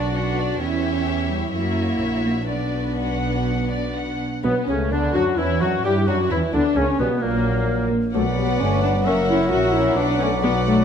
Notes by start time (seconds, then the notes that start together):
Already playing: B1 D4 F#4 D5
0.15 D4 B4 F#5
0.38 F#4 D5
0.61 E2 C#4 E4 G4 C#5 E5
1.07 E4
1.30 G3
1.53 F#2 A#3 F#4 C#5 E5
2.01 A#1
2.24 A#3
2.48 B1 B3 D4 F#4 B4 D5
2.98 F#5
3.71 D5
3.95 F#5
4.43 B1 B2 F#3 B3 B4
4.66 C#2 C#3 A3 C#4
4.91 D2 D3 B3 D4
5.14 F#2 F#3 D4 F#4
5.37 E2 E3 C#4 E4
5.60 F#2 F#3 D4 F#4
5.83 G2 G3 E4 G4
6.07 F#2 F#3 D4 F#4
6.29 E2 E3 C#4 E4
6.53 D2 D3 B3 D4
6.76 C#2 C#3 A#3 C#4
6.99 B1 B2 G3 B3 B4
7.21 A#1 A#2 F#3 A#3 A#4
8.13 B1 B2 F#3 A3 B4 D5 F#5
8.37 G3 B3
8.60 G1 G2 A3 C#4
8.83 B3 D4
9.05 F#1 F#2 A#3 C#4 A#4 E5 F#5
9.29 C#4 E4
9.50 A#1 A#2 C#4 F#4 A#4 E5 F#5
9.74 C#4 E4
9.96 B1 B2 B3 D4 B4 D5 F#5
10.20 A3 C#4
10.42 F#3 B3 B4 D5 F#5
10.65 F#3 A3